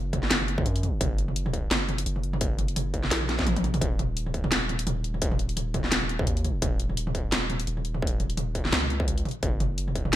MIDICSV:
0, 0, Header, 1, 3, 480
1, 0, Start_track
1, 0, Tempo, 350877
1, 1379, Time_signature, 4, 2, 24, 8
1, 13896, End_track
2, 0, Start_track
2, 0, Title_t, "808-style bass"
2, 0, Program_c, 0, 38
2, 0, Note_on_c, 0, 30, 99
2, 402, Note_off_c, 0, 30, 0
2, 419, Note_on_c, 0, 30, 95
2, 882, Note_off_c, 0, 30, 0
2, 897, Note_on_c, 0, 42, 99
2, 1361, Note_off_c, 0, 42, 0
2, 1378, Note_on_c, 0, 30, 103
2, 2322, Note_off_c, 0, 30, 0
2, 2338, Note_on_c, 0, 30, 102
2, 2802, Note_off_c, 0, 30, 0
2, 2819, Note_on_c, 0, 30, 97
2, 4242, Note_off_c, 0, 30, 0
2, 4259, Note_on_c, 0, 34, 96
2, 5202, Note_off_c, 0, 34, 0
2, 5218, Note_on_c, 0, 27, 98
2, 6162, Note_off_c, 0, 27, 0
2, 6178, Note_on_c, 0, 27, 98
2, 6642, Note_off_c, 0, 27, 0
2, 6659, Note_on_c, 0, 27, 101
2, 8082, Note_off_c, 0, 27, 0
2, 8098, Note_on_c, 0, 27, 98
2, 8562, Note_off_c, 0, 27, 0
2, 8578, Note_on_c, 0, 39, 97
2, 9042, Note_off_c, 0, 39, 0
2, 9058, Note_on_c, 0, 27, 97
2, 9728, Note_off_c, 0, 27, 0
2, 9728, Note_on_c, 0, 26, 97
2, 10001, Note_off_c, 0, 26, 0
2, 10016, Note_on_c, 0, 27, 98
2, 10481, Note_off_c, 0, 27, 0
2, 10499, Note_on_c, 0, 27, 100
2, 11922, Note_off_c, 0, 27, 0
2, 11938, Note_on_c, 0, 37, 99
2, 12641, Note_off_c, 0, 37, 0
2, 12897, Note_on_c, 0, 30, 101
2, 13841, Note_off_c, 0, 30, 0
2, 13896, End_track
3, 0, Start_track
3, 0, Title_t, "Drums"
3, 178, Note_on_c, 9, 36, 64
3, 180, Note_on_c, 9, 42, 34
3, 180, Note_on_c, 9, 45, 79
3, 314, Note_on_c, 9, 38, 38
3, 315, Note_off_c, 9, 36, 0
3, 317, Note_off_c, 9, 42, 0
3, 317, Note_off_c, 9, 45, 0
3, 420, Note_off_c, 9, 38, 0
3, 420, Note_on_c, 9, 38, 114
3, 420, Note_on_c, 9, 42, 79
3, 554, Note_on_c, 9, 45, 52
3, 557, Note_off_c, 9, 38, 0
3, 557, Note_off_c, 9, 42, 0
3, 660, Note_on_c, 9, 42, 37
3, 691, Note_off_c, 9, 45, 0
3, 793, Note_on_c, 9, 36, 108
3, 795, Note_on_c, 9, 45, 80
3, 796, Note_off_c, 9, 42, 0
3, 900, Note_on_c, 9, 42, 66
3, 930, Note_off_c, 9, 36, 0
3, 932, Note_off_c, 9, 45, 0
3, 1035, Note_on_c, 9, 46, 39
3, 1037, Note_off_c, 9, 42, 0
3, 1140, Note_on_c, 9, 42, 37
3, 1140, Note_on_c, 9, 45, 54
3, 1172, Note_off_c, 9, 46, 0
3, 1277, Note_off_c, 9, 42, 0
3, 1277, Note_off_c, 9, 45, 0
3, 1378, Note_on_c, 9, 36, 120
3, 1379, Note_on_c, 9, 42, 81
3, 1379, Note_on_c, 9, 45, 83
3, 1515, Note_off_c, 9, 36, 0
3, 1516, Note_off_c, 9, 42, 0
3, 1516, Note_off_c, 9, 45, 0
3, 1621, Note_on_c, 9, 42, 36
3, 1755, Note_on_c, 9, 45, 55
3, 1757, Note_off_c, 9, 42, 0
3, 1862, Note_on_c, 9, 46, 73
3, 1892, Note_off_c, 9, 45, 0
3, 1995, Note_on_c, 9, 45, 83
3, 1999, Note_off_c, 9, 46, 0
3, 2099, Note_on_c, 9, 36, 62
3, 2101, Note_on_c, 9, 42, 35
3, 2132, Note_off_c, 9, 45, 0
3, 2236, Note_off_c, 9, 36, 0
3, 2238, Note_off_c, 9, 42, 0
3, 2341, Note_on_c, 9, 38, 113
3, 2341, Note_on_c, 9, 42, 84
3, 2341, Note_on_c, 9, 45, 57
3, 2478, Note_off_c, 9, 38, 0
3, 2478, Note_off_c, 9, 42, 0
3, 2478, Note_off_c, 9, 45, 0
3, 2581, Note_on_c, 9, 42, 37
3, 2581, Note_on_c, 9, 45, 83
3, 2714, Note_on_c, 9, 46, 66
3, 2717, Note_off_c, 9, 42, 0
3, 2717, Note_off_c, 9, 45, 0
3, 2821, Note_on_c, 9, 42, 68
3, 2851, Note_off_c, 9, 46, 0
3, 2954, Note_on_c, 9, 45, 56
3, 2957, Note_off_c, 9, 42, 0
3, 3057, Note_on_c, 9, 42, 38
3, 3091, Note_off_c, 9, 45, 0
3, 3192, Note_on_c, 9, 45, 87
3, 3194, Note_off_c, 9, 42, 0
3, 3296, Note_on_c, 9, 42, 82
3, 3299, Note_on_c, 9, 36, 117
3, 3329, Note_off_c, 9, 45, 0
3, 3432, Note_off_c, 9, 42, 0
3, 3436, Note_off_c, 9, 36, 0
3, 3537, Note_on_c, 9, 42, 38
3, 3537, Note_on_c, 9, 45, 57
3, 3671, Note_on_c, 9, 46, 40
3, 3674, Note_off_c, 9, 42, 0
3, 3674, Note_off_c, 9, 45, 0
3, 3779, Note_off_c, 9, 46, 0
3, 3779, Note_on_c, 9, 45, 83
3, 3779, Note_on_c, 9, 46, 68
3, 3916, Note_off_c, 9, 45, 0
3, 3916, Note_off_c, 9, 46, 0
3, 4018, Note_on_c, 9, 36, 63
3, 4019, Note_on_c, 9, 42, 37
3, 4152, Note_on_c, 9, 38, 37
3, 4152, Note_on_c, 9, 45, 55
3, 4155, Note_off_c, 9, 36, 0
3, 4156, Note_off_c, 9, 42, 0
3, 4260, Note_off_c, 9, 38, 0
3, 4260, Note_on_c, 9, 38, 121
3, 4260, Note_on_c, 9, 42, 85
3, 4289, Note_off_c, 9, 45, 0
3, 4393, Note_on_c, 9, 45, 81
3, 4396, Note_off_c, 9, 38, 0
3, 4396, Note_off_c, 9, 42, 0
3, 4501, Note_on_c, 9, 38, 61
3, 4501, Note_on_c, 9, 42, 39
3, 4530, Note_off_c, 9, 45, 0
3, 4633, Note_on_c, 9, 36, 110
3, 4636, Note_off_c, 9, 38, 0
3, 4636, Note_on_c, 9, 38, 61
3, 4638, Note_off_c, 9, 42, 0
3, 4742, Note_on_c, 9, 42, 65
3, 4742, Note_on_c, 9, 45, 57
3, 4742, Note_on_c, 9, 47, 79
3, 4770, Note_off_c, 9, 36, 0
3, 4773, Note_off_c, 9, 38, 0
3, 4876, Note_off_c, 9, 47, 0
3, 4876, Note_on_c, 9, 46, 38
3, 4876, Note_on_c, 9, 47, 76
3, 4879, Note_off_c, 9, 42, 0
3, 4879, Note_off_c, 9, 45, 0
3, 4982, Note_on_c, 9, 42, 39
3, 4982, Note_on_c, 9, 45, 87
3, 5013, Note_off_c, 9, 46, 0
3, 5013, Note_off_c, 9, 47, 0
3, 5115, Note_off_c, 9, 45, 0
3, 5115, Note_on_c, 9, 45, 90
3, 5115, Note_on_c, 9, 46, 38
3, 5119, Note_off_c, 9, 42, 0
3, 5218, Note_on_c, 9, 36, 123
3, 5221, Note_off_c, 9, 45, 0
3, 5221, Note_on_c, 9, 42, 84
3, 5221, Note_on_c, 9, 45, 57
3, 5252, Note_off_c, 9, 46, 0
3, 5355, Note_off_c, 9, 36, 0
3, 5358, Note_off_c, 9, 42, 0
3, 5358, Note_off_c, 9, 45, 0
3, 5462, Note_on_c, 9, 42, 39
3, 5462, Note_on_c, 9, 45, 83
3, 5598, Note_off_c, 9, 42, 0
3, 5598, Note_off_c, 9, 45, 0
3, 5700, Note_on_c, 9, 46, 66
3, 5834, Note_on_c, 9, 45, 56
3, 5837, Note_off_c, 9, 46, 0
3, 5938, Note_on_c, 9, 36, 65
3, 5940, Note_on_c, 9, 42, 38
3, 5970, Note_off_c, 9, 45, 0
3, 6073, Note_on_c, 9, 45, 86
3, 6075, Note_off_c, 9, 36, 0
3, 6077, Note_off_c, 9, 42, 0
3, 6179, Note_on_c, 9, 38, 121
3, 6179, Note_on_c, 9, 42, 87
3, 6210, Note_off_c, 9, 45, 0
3, 6316, Note_off_c, 9, 38, 0
3, 6316, Note_off_c, 9, 42, 0
3, 6420, Note_on_c, 9, 42, 40
3, 6420, Note_on_c, 9, 45, 55
3, 6553, Note_on_c, 9, 46, 68
3, 6557, Note_off_c, 9, 42, 0
3, 6557, Note_off_c, 9, 45, 0
3, 6659, Note_on_c, 9, 42, 69
3, 6659, Note_on_c, 9, 45, 86
3, 6690, Note_off_c, 9, 46, 0
3, 6796, Note_off_c, 9, 42, 0
3, 6796, Note_off_c, 9, 45, 0
3, 6898, Note_on_c, 9, 42, 41
3, 7033, Note_on_c, 9, 45, 57
3, 7035, Note_off_c, 9, 42, 0
3, 7137, Note_on_c, 9, 42, 87
3, 7138, Note_on_c, 9, 36, 126
3, 7170, Note_off_c, 9, 45, 0
3, 7272, Note_on_c, 9, 45, 82
3, 7274, Note_off_c, 9, 42, 0
3, 7275, Note_off_c, 9, 36, 0
3, 7377, Note_on_c, 9, 42, 39
3, 7408, Note_off_c, 9, 45, 0
3, 7511, Note_on_c, 9, 46, 37
3, 7514, Note_off_c, 9, 42, 0
3, 7617, Note_off_c, 9, 46, 0
3, 7617, Note_on_c, 9, 45, 55
3, 7617, Note_on_c, 9, 46, 63
3, 7753, Note_off_c, 9, 45, 0
3, 7753, Note_off_c, 9, 46, 0
3, 7855, Note_on_c, 9, 42, 38
3, 7855, Note_on_c, 9, 45, 83
3, 7858, Note_on_c, 9, 36, 66
3, 7989, Note_on_c, 9, 38, 40
3, 7992, Note_off_c, 9, 42, 0
3, 7992, Note_off_c, 9, 45, 0
3, 7995, Note_off_c, 9, 36, 0
3, 8095, Note_off_c, 9, 38, 0
3, 8095, Note_on_c, 9, 38, 123
3, 8095, Note_on_c, 9, 42, 88
3, 8229, Note_on_c, 9, 45, 54
3, 8232, Note_off_c, 9, 38, 0
3, 8232, Note_off_c, 9, 42, 0
3, 8336, Note_on_c, 9, 42, 39
3, 8366, Note_off_c, 9, 45, 0
3, 8471, Note_on_c, 9, 45, 82
3, 8473, Note_off_c, 9, 42, 0
3, 8473, Note_on_c, 9, 36, 116
3, 8577, Note_on_c, 9, 42, 68
3, 8608, Note_off_c, 9, 45, 0
3, 8609, Note_off_c, 9, 36, 0
3, 8712, Note_on_c, 9, 46, 36
3, 8713, Note_off_c, 9, 42, 0
3, 8817, Note_on_c, 9, 42, 41
3, 8817, Note_on_c, 9, 45, 56
3, 8849, Note_off_c, 9, 46, 0
3, 8954, Note_off_c, 9, 42, 0
3, 8954, Note_off_c, 9, 45, 0
3, 9057, Note_on_c, 9, 42, 86
3, 9057, Note_on_c, 9, 45, 81
3, 9058, Note_on_c, 9, 36, 127
3, 9194, Note_off_c, 9, 42, 0
3, 9194, Note_off_c, 9, 45, 0
3, 9195, Note_off_c, 9, 36, 0
3, 9297, Note_on_c, 9, 42, 41
3, 9432, Note_on_c, 9, 45, 53
3, 9433, Note_off_c, 9, 42, 0
3, 9538, Note_on_c, 9, 46, 62
3, 9569, Note_off_c, 9, 45, 0
3, 9672, Note_on_c, 9, 45, 76
3, 9675, Note_off_c, 9, 46, 0
3, 9778, Note_on_c, 9, 36, 67
3, 9779, Note_on_c, 9, 42, 38
3, 9809, Note_off_c, 9, 45, 0
3, 9915, Note_off_c, 9, 36, 0
3, 9916, Note_off_c, 9, 42, 0
3, 10017, Note_on_c, 9, 38, 127
3, 10017, Note_on_c, 9, 42, 84
3, 10017, Note_on_c, 9, 45, 56
3, 10154, Note_off_c, 9, 38, 0
3, 10154, Note_off_c, 9, 42, 0
3, 10154, Note_off_c, 9, 45, 0
3, 10256, Note_on_c, 9, 42, 39
3, 10256, Note_on_c, 9, 45, 79
3, 10391, Note_on_c, 9, 46, 66
3, 10393, Note_off_c, 9, 42, 0
3, 10393, Note_off_c, 9, 45, 0
3, 10496, Note_on_c, 9, 42, 71
3, 10527, Note_off_c, 9, 46, 0
3, 10630, Note_on_c, 9, 45, 51
3, 10632, Note_off_c, 9, 42, 0
3, 10736, Note_on_c, 9, 42, 39
3, 10767, Note_off_c, 9, 45, 0
3, 10869, Note_on_c, 9, 45, 80
3, 10872, Note_off_c, 9, 42, 0
3, 10977, Note_on_c, 9, 36, 125
3, 11006, Note_off_c, 9, 45, 0
3, 11043, Note_on_c, 9, 42, 77
3, 11114, Note_off_c, 9, 36, 0
3, 11179, Note_off_c, 9, 42, 0
3, 11217, Note_on_c, 9, 42, 37
3, 11217, Note_on_c, 9, 45, 51
3, 11350, Note_on_c, 9, 46, 37
3, 11353, Note_off_c, 9, 42, 0
3, 11353, Note_off_c, 9, 45, 0
3, 11456, Note_off_c, 9, 46, 0
3, 11456, Note_on_c, 9, 45, 79
3, 11456, Note_on_c, 9, 46, 64
3, 11593, Note_off_c, 9, 45, 0
3, 11593, Note_off_c, 9, 46, 0
3, 11697, Note_on_c, 9, 36, 68
3, 11697, Note_on_c, 9, 42, 37
3, 11833, Note_on_c, 9, 38, 41
3, 11833, Note_on_c, 9, 45, 52
3, 11834, Note_off_c, 9, 36, 0
3, 11834, Note_off_c, 9, 42, 0
3, 11937, Note_off_c, 9, 38, 0
3, 11937, Note_on_c, 9, 38, 123
3, 11937, Note_on_c, 9, 42, 80
3, 11970, Note_off_c, 9, 45, 0
3, 12073, Note_on_c, 9, 45, 78
3, 12074, Note_off_c, 9, 38, 0
3, 12074, Note_off_c, 9, 42, 0
3, 12179, Note_on_c, 9, 42, 37
3, 12210, Note_off_c, 9, 45, 0
3, 12311, Note_on_c, 9, 36, 114
3, 12316, Note_off_c, 9, 42, 0
3, 12419, Note_on_c, 9, 42, 68
3, 12419, Note_on_c, 9, 45, 52
3, 12448, Note_off_c, 9, 36, 0
3, 12553, Note_on_c, 9, 46, 36
3, 12556, Note_off_c, 9, 42, 0
3, 12556, Note_off_c, 9, 45, 0
3, 12659, Note_on_c, 9, 42, 18
3, 12659, Note_on_c, 9, 45, 77
3, 12690, Note_off_c, 9, 46, 0
3, 12704, Note_off_c, 9, 42, 0
3, 12704, Note_on_c, 9, 42, 23
3, 12738, Note_off_c, 9, 42, 0
3, 12738, Note_on_c, 9, 42, 31
3, 12796, Note_off_c, 9, 45, 0
3, 12875, Note_off_c, 9, 42, 0
3, 12896, Note_on_c, 9, 42, 77
3, 12896, Note_on_c, 9, 45, 51
3, 12898, Note_on_c, 9, 36, 119
3, 13033, Note_off_c, 9, 42, 0
3, 13033, Note_off_c, 9, 45, 0
3, 13034, Note_off_c, 9, 36, 0
3, 13137, Note_on_c, 9, 42, 38
3, 13137, Note_on_c, 9, 45, 80
3, 13274, Note_off_c, 9, 42, 0
3, 13274, Note_off_c, 9, 45, 0
3, 13377, Note_on_c, 9, 46, 65
3, 13512, Note_on_c, 9, 45, 51
3, 13514, Note_off_c, 9, 46, 0
3, 13618, Note_on_c, 9, 36, 66
3, 13618, Note_on_c, 9, 42, 37
3, 13648, Note_off_c, 9, 45, 0
3, 13752, Note_on_c, 9, 45, 79
3, 13755, Note_off_c, 9, 36, 0
3, 13755, Note_off_c, 9, 42, 0
3, 13889, Note_off_c, 9, 45, 0
3, 13896, End_track
0, 0, End_of_file